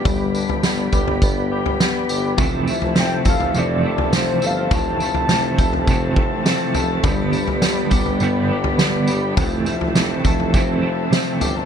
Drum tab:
TB |x-x-x-x-x---x-x-|x-x-x-x-x---x-x-|x-x-x-x-x---x-x-|x-x-x-x-x---x-x-|
SD |----o-------o---|----o-------o---|----o-------o---|----o-------o---|
FT |o--o--oo---o----|o--o--oo---o----|o--o--oo------o-|o--o--oo---o----|
BD |o-----o-o-------|o-----o---------|o-----o-o-o-----|o-----o---------|

TB |x-x-x-x-x---x-x-|
SD |----o-------o---|
FT |o--o--oo------o-|
BD |o-----o-o-------|